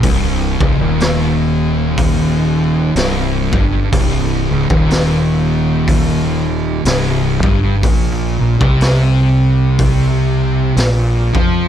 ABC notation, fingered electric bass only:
X:1
M:4/4
L:1/16
Q:"Swing" 1/4=62
K:Cm
V:1 name="Fingered electric bass" clef=bass
C,,,2 _D,,, E,,,8- E,,, C,,,2 G,,,2 | C,,,2 _D,,, E,,,8- E,,, C,,,2 G,,,2 | B,,,2 B,,, C,,8- C,, B,,,2 F,,2 |]